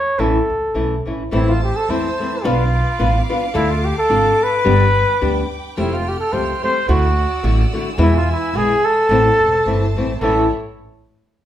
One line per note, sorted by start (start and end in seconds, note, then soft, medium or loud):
0.00 0.21 C#5 medium
0.18 0.39 A1 loud
0.18 0.37 A2 medium
0.18 0.37 E3 medium
0.18 0.37 A3 medium
0.18 0.38 C#4 medium
0.18 0.38 E4 medium
0.18 1.07 A4 medium
0.50 0.73 C#2 medium
0.74 1.03 B1 medium
0.74 0.94 E3 medium
0.74 0.94 A3 medium
0.74 0.94 C#4 medium
0.74 0.94 E4 medium
1.06 1.30 A1 medium
1.06 1.22 E3 medium
1.06 1.22 A3 medium
1.06 1.22 C#4 medium
1.06 1.22 E4 medium
1.31 1.69 A1 loud
1.31 1.50 A2 medium
1.31 1.51 E3 medium
1.31 1.51 A3 medium
1.31 1.51 C4 medium
1.31 1.51 E4 medium
1.31 1.50 E4 medium
1.31 2.43 C5 medium
1.31 2.43 A5 medium
1.31 2.43 E6 medium
1.49 1.63 F4 medium
1.64 1.78 G4 medium
1.77 1.92 A4 medium
1.88 2.09 E2 medium
1.88 2.07 E3 medium
1.88 2.07 A3 medium
1.88 2.08 C4 medium
1.88 2.08 E4 medium
1.88 2.47 C5 medium
2.19 2.34 E3 medium
2.19 2.35 A3 medium
2.19 2.35 C4 medium
2.19 2.35 E4 medium
2.43 2.81 B1 loud
2.43 2.62 B3 medium
2.43 2.62 D4 medium
2.43 2.63 F4 loud
2.43 3.30 F4 medium
2.43 3.53 B4 medium
2.43 2.63 B4 loud
2.43 4.62 F5 medium
2.43 5.73 D6 medium
2.99 3.19 A1 loud
2.99 3.17 B3 medium
2.99 3.17 D4 medium
2.99 3.18 F4 medium
2.99 3.18 B4 medium
3.29 3.44 B3 medium
3.29 3.44 D4 medium
3.29 3.44 F4 medium
3.29 3.45 B4 medium
3.54 3.91 D2 loud
3.54 3.72 D3 medium
3.54 3.72 D4 medium
3.54 3.72 E4 loud
3.54 3.72 F4 loud
3.54 3.72 A4 loud
3.54 4.64 A4 medium
3.71 3.86 F4 medium
3.85 3.97 G4 medium
3.98 4.45 A4 medium
4.09 4.29 G#1 medium
4.09 4.28 D3 medium
4.09 4.28 D4 medium
4.09 4.28 F4 medium
4.09 4.28 A4 medium
4.43 5.54 B4 loud
4.64 5.02 G1 loud
4.64 4.83 G2 medium
4.64 4.83 D3 medium
4.64 4.83 G3 medium
4.64 4.83 B3 medium
4.64 4.84 D4 medium
4.64 4.84 G4 medium
4.64 5.76 B4 medium
4.64 6.86 G5 medium
5.21 5.42 D2 medium
5.21 5.39 G3 medium
5.21 5.40 B3 medium
5.21 5.40 D4 medium
5.21 5.40 G4 medium
5.77 6.13 F1 loud
5.77 5.95 F3 medium
5.77 5.95 A3 medium
5.77 5.96 C4 medium
5.77 5.95 E4 medium
5.77 5.96 G4 medium
5.77 6.88 A4 medium
5.77 6.88 F6 medium
5.93 6.10 F4 medium
6.08 6.19 G4 medium
6.20 6.34 A4 medium
6.32 6.53 C#2 medium
6.32 6.51 F3 medium
6.32 6.51 A3 medium
6.32 6.51 C4 medium
6.32 6.51 G4 medium
6.32 6.63 C5 medium
6.62 6.78 F3 medium
6.62 6.78 A3 medium
6.62 6.78 C4 medium
6.62 6.79 G4 medium
6.62 6.87 C5 loud
6.87 7.24 D2 loud
6.87 7.06 D3 medium
6.87 7.06 A3 medium
6.87 7.07 E4 loud
6.87 7.07 F#4 medium
6.87 7.70 F#4 medium
6.87 7.96 D5 medium
6.87 7.96 F#5 medium
6.87 10.17 E6 medium
7.43 7.63 A1 loud
7.43 7.61 D3 medium
7.43 7.61 A3 medium
7.43 7.62 E4 medium
7.43 7.62 F#4 medium
7.73 7.88 D3 medium
7.73 7.88 A3 medium
7.73 7.89 E4 medium
7.73 7.89 F#4 medium
7.96 8.16 E2 medium
7.96 8.34 E2 loud
7.96 8.16 B2 medium
7.96 8.16 E3 loud
7.96 8.16 G#3 medium
7.96 8.17 B3 medium
7.96 8.17 E4 loud
7.96 9.07 B4 medium
7.96 9.07 G#5 medium
8.01 8.14 E4 loud
8.16 8.29 F4 loud
8.32 8.58 E4 medium
8.54 8.73 A#1 medium
8.54 8.72 E3 medium
8.54 8.72 G#3 medium
8.54 8.73 B3 medium
8.54 8.73 E4 medium
8.54 8.86 G#4 loud
8.85 9.96 A4 loud
9.09 9.29 A1 loud
9.09 9.28 A2 medium
9.09 9.28 E3 medium
9.09 9.28 A3 medium
9.09 9.28 C4 medium
9.09 9.29 E4 medium
9.09 10.20 C5 medium
9.09 10.20 A5 medium
9.40 9.63 E1 medium
9.66 9.93 G1 medium
9.66 9.84 E3 medium
9.66 9.84 A3 medium
9.66 9.84 C4 medium
9.66 9.85 E4 medium
9.96 10.19 A1 medium
9.96 10.11 E3 medium
9.96 10.12 A3 medium
9.96 10.12 C4 medium
9.96 10.12 E4 medium
10.20 10.49 A1 medium
10.20 10.45 A2 medium
10.20 10.45 E3 medium
10.20 10.49 A3 medium
10.20 10.46 A3 medium
10.20 10.46 C#4 medium
10.20 10.49 E4 medium
10.20 10.46 E4 medium
10.20 10.49 A4 medium
10.20 10.49 C#5 medium